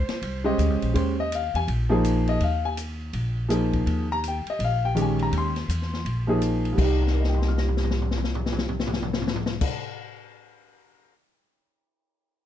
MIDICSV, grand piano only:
0, 0, Header, 1, 2, 480
1, 0, Start_track
1, 0, Tempo, 363416
1, 1255, Time_signature, 4, 2, 24, 8
1, 16456, End_track
2, 0, Start_track
2, 0, Title_t, "Grand piano"
2, 0, Program_c, 0, 0
2, 584, Note_on_c, 0, 56, 74
2, 590, Note_on_c, 0, 61, 62
2, 591, Note_on_c, 0, 67, 69
2, 601, Note_on_c, 0, 72, 67
2, 604, Note_on_c, 0, 75, 85
2, 1213, Note_off_c, 0, 56, 0
2, 1215, Note_off_c, 0, 61, 0
2, 1216, Note_off_c, 0, 67, 0
2, 1221, Note_off_c, 0, 72, 0
2, 1223, Note_off_c, 0, 75, 0
2, 1239, Note_on_c, 0, 56, 54
2, 1244, Note_on_c, 0, 61, 53
2, 1252, Note_on_c, 0, 67, 47
2, 1262, Note_on_c, 0, 72, 61
2, 1522, Note_off_c, 0, 56, 0
2, 1524, Note_off_c, 0, 61, 0
2, 1528, Note_off_c, 0, 67, 0
2, 1533, Note_off_c, 0, 72, 0
2, 1585, Note_on_c, 0, 75, 84
2, 1743, Note_off_c, 0, 75, 0
2, 1782, Note_on_c, 0, 77, 69
2, 2056, Note_off_c, 0, 77, 0
2, 2059, Note_on_c, 0, 80, 100
2, 2221, Note_off_c, 0, 80, 0
2, 2501, Note_on_c, 0, 53, 81
2, 2510, Note_on_c, 0, 58, 62
2, 2512, Note_on_c, 0, 63, 66
2, 2527, Note_on_c, 0, 68, 80
2, 3024, Note_on_c, 0, 75, 84
2, 3133, Note_off_c, 0, 53, 0
2, 3138, Note_off_c, 0, 58, 0
2, 3139, Note_off_c, 0, 63, 0
2, 3146, Note_off_c, 0, 68, 0
2, 3184, Note_off_c, 0, 75, 0
2, 3218, Note_on_c, 0, 77, 64
2, 3495, Note_off_c, 0, 77, 0
2, 3504, Note_on_c, 0, 80, 84
2, 3603, Note_off_c, 0, 80, 0
2, 4602, Note_on_c, 0, 53, 60
2, 4610, Note_on_c, 0, 58, 56
2, 4621, Note_on_c, 0, 63, 55
2, 4628, Note_on_c, 0, 68, 68
2, 5337, Note_off_c, 0, 53, 0
2, 5341, Note_off_c, 0, 58, 0
2, 5347, Note_off_c, 0, 63, 0
2, 5351, Note_off_c, 0, 68, 0
2, 5443, Note_on_c, 0, 82, 91
2, 5597, Note_off_c, 0, 82, 0
2, 5652, Note_on_c, 0, 79, 76
2, 5915, Note_off_c, 0, 79, 0
2, 5942, Note_on_c, 0, 75, 81
2, 6087, Note_off_c, 0, 75, 0
2, 6133, Note_on_c, 0, 77, 76
2, 6396, Note_off_c, 0, 77, 0
2, 6406, Note_on_c, 0, 79, 82
2, 6535, Note_on_c, 0, 51, 56
2, 6547, Note_on_c, 0, 56, 55
2, 6552, Note_on_c, 0, 61, 53
2, 6559, Note_off_c, 0, 79, 0
2, 6561, Note_on_c, 0, 67, 73
2, 6626, Note_on_c, 0, 80, 69
2, 6883, Note_off_c, 0, 80, 0
2, 6902, Note_on_c, 0, 82, 75
2, 7047, Note_off_c, 0, 82, 0
2, 7102, Note_on_c, 0, 84, 84
2, 7265, Note_off_c, 0, 51, 0
2, 7271, Note_off_c, 0, 56, 0
2, 7274, Note_off_c, 0, 61, 0
2, 7278, Note_off_c, 0, 67, 0
2, 8283, Note_on_c, 0, 53, 61
2, 8293, Note_on_c, 0, 58, 56
2, 8301, Note_on_c, 0, 63, 65
2, 8313, Note_on_c, 0, 68, 74
2, 8452, Note_off_c, 0, 84, 0
2, 8879, Note_on_c, 0, 36, 60
2, 8908, Note_off_c, 0, 53, 0
2, 8913, Note_off_c, 0, 58, 0
2, 8917, Note_off_c, 0, 63, 0
2, 8918, Note_on_c, 0, 48, 57
2, 8923, Note_off_c, 0, 68, 0
2, 8959, Note_on_c, 0, 55, 53
2, 8995, Note_on_c, 0, 63, 54
2, 9036, Note_on_c, 0, 67, 65
2, 9420, Note_on_c, 0, 70, 39
2, 9517, Note_on_c, 0, 75, 41
2, 9623, Note_on_c, 0, 79, 40
2, 9743, Note_on_c, 0, 84, 35
2, 9881, Note_on_c, 0, 89, 36
2, 10018, Note_on_c, 0, 94, 34
2, 12708, Note_off_c, 0, 70, 0
2, 12731, Note_off_c, 0, 36, 0
2, 12751, Note_off_c, 0, 48, 0
2, 12757, Note_off_c, 0, 75, 0
2, 12771, Note_off_c, 0, 55, 0
2, 12789, Note_off_c, 0, 63, 0
2, 12809, Note_off_c, 0, 67, 0
2, 12810, Note_off_c, 0, 79, 0
2, 12870, Note_off_c, 0, 84, 0
2, 12939, Note_off_c, 0, 89, 0
2, 13008, Note_off_c, 0, 94, 0
2, 16456, End_track
0, 0, End_of_file